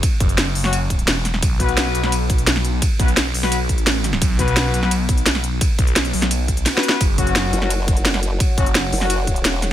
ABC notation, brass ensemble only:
X:1
M:4/4
L:1/16
Q:1/4=172
K:Bm
V:1 name="Brass ensemble"
z6 z [F,CF]2 z6 z | z2 [B,FB]4- [B,FB] [B,FB] z8 | z2 [B,FB] z4 [B,FB]2 z6 z | z2 [B,FB]4- [B,FB] [B,FB] z8 |
z12 z [B,FB]3 | z2 [F,CF]4- [F,CF] [F,CF] z8 | z2 [F,CF] z4 [F,CF]2 z6 z |]